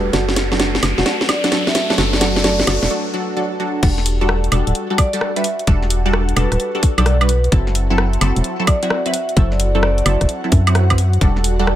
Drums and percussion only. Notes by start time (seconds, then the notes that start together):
0.13 snare, closed hi-hat
0.29 snare
0.36 snare, open hi-hat
0.52 snare
0.60 snare, closed hi-hat
0.75 snare
0.83 snare, open hi-hat, high woodblock
0.98 snare
1.06 snare, closed hi-hat
1.21 snare
1.29 snare, open hi-hat, high woodblock
1.44 snare, closed hi-hat
1.52 snare, closed hi-hat
1.67 snare
1.75 snare, open hi-hat
1.90 snare
1.98 snare, closed hi-hat
2.13 snare
2.21 snare, open hi-hat
2.36 snare
2.44 snare, closed hi-hat
2.59 snare
2.67 snare, open hi-hat, high woodblock
2.83 snare
3.83 kick, closed hi-hat, crash
3.98 snare
4.06 open hi-hat
4.29 cross-stick
4.44 closed hi-hat
4.52 open hi-hat, high woodblock
4.67 closed hi-hat
4.75 closed hi-hat
4.98 kick, open hi-hat, high woodblock
5.13 closed hi-hat
5.21 cross-stick
5.36 closed hi-hat
5.44 open hi-hat
5.59 closed hi-hat
5.67 kick, closed hi-hat
5.82 snare
5.90 open hi-hat
6.13 cross-stick
6.29 closed hi-hat
6.37 open hi-hat, high woodblock
6.52 cross-stick, closed hi-hat
6.60 closed hi-hat
6.83 kick, open hi-hat
6.98 closed hi-hat, high woodblock
7.06 cross-stick, open hi-hat
7.21 closed hi-hat, high woodblock
7.29 open hi-hat
7.44 closed hi-hat
7.52 kick, closed hi-hat
7.67 snare
7.75 open hi-hat
7.98 cross-stick
8.13 closed hi-hat
8.21 open hi-hat, high woodblock
8.36 closed hi-hat
8.44 closed hi-hat
8.67 kick, open hi-hat, high woodblock
8.83 closed hi-hat
8.90 cross-stick
9.06 closed hi-hat
9.14 open hi-hat
9.29 closed hi-hat
9.37 kick, closed hi-hat
9.52 snare
9.60 open hi-hat
9.83 cross-stick
9.98 closed hi-hat
10.06 open hi-hat, high woodblock
10.21 kick, cross-stick, closed hi-hat
10.29 closed hi-hat
10.52 kick, open hi-hat
10.67 closed hi-hat, high woodblock
10.75 cross-stick, open hi-hat
10.90 kick, closed hi-hat, high woodblock
10.98 open hi-hat
11.13 closed hi-hat
11.21 kick, closed hi-hat
11.36 snare
11.44 open hi-hat
11.67 cross-stick